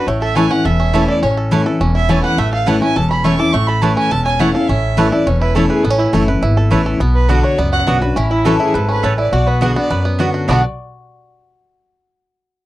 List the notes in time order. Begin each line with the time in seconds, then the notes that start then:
0.07 A1 A2 A3 C#5
0.22 A4 E5
0.36 E3 A3 C#4 E4 B4 C#5 G#5 A5
0.51 C#4 E4 F#5
0.65 E1 E2 A4 E5
0.80 C#4
0.93 E3 A3 C#4 E4 C#5 A5
1.08 A4 D5
1.22 A1 A2 C#4 C#5
1.37 A4
1.51 E3 A3 C#4 E4 B4 C#5 A5
1.66 C#4 E4 A4
1.80 E1 E2 C#4
1.95 E4 E5
2.09 E3 A3 C#4 E4 A4 C#5 G#5 A5
2.24 B4 F#5
2.38 A1 A2 A3 E5
2.53 A4 F5
2.66 E3 A3 C#4 E4 B4 C#5 F#5 A5
2.81 C#4 E4 G#5
2.96 E1 E2 A4 A5
3.11 C#4 B5
3.24 E3 A3 C#4 E4 C#5 A5 C#6
3.39 C#4 E4 A4 D6
3.53 A1 A2 A3 C#6
3.67 A4 B5
3.82 E3 A3 C#4 E4 B4 C#5 A5
3.96 C#4 G#5
4.11 E1 E2 A4 A5
4.25 C#4 G#5
4.39 E3 A3 C#4 E4 C#5 F#5 A5
4.54 C#4 E4 A4 F5
4.68 A1 A2 C#4 E5
4.97 E3 A3 C#4 E4 B4 C#5 A5
5.12 C#4 E4 A4 D5
5.26 E1 E2 C#4 C#5
5.41 E4 B4
5.55 E3 A3 C#4 E4 A4 C#5 A5
5.69 G#4 B4
5.83 A1 A2 B3 A4
5.90 C#4
5.98 E4
6.13 F#1 E3 A3 C#4 E4 A4 C#5 A5
6.28 C#4 E4 B4
6.42 G#1 E2 E4
6.57 A4
6.70 A1 E3 A3 C#4 E4 B4 C#5 A5
6.86 A4
7.00 B1 B2 B3
7.14 B4
7.29 D3 B3 D4 F#4 A4 B4 D5 F#5
7.44 F#4 C#5
7.58 C#2 F#2 B3 D5
7.72 F#4 F#5
7.87 B1 D3 B3 D4 F#4 D5 F#5
8.02 D4 F#4 B4
8.16 A1 A2 C#4 E4
8.30 E4
8.45 E3 A3 C#4 E4 F#4 A4 B4 C#5 A5
8.60 E4 G#4
8.74 G#1 G#2 A4 B4
8.89 C#4 B4
9.03 A1 A2 A3 E4 B4 C#5 A5
9.18 E4 D5
9.32 B1 B2 F#4 D5
9.47 B3 B4
9.61 D3 B3 D4 F#4 G#4 D5 F#5
9.75 B3 D4 F#4 D5
9.90 F#2 B4
10.05 B3
10.19 D3 B3 D4 F#4 D5 F#5
10.34 F#4
10.48 B1 B2 D3 B3 D4 F#4 D5 F#5
10.53 F#4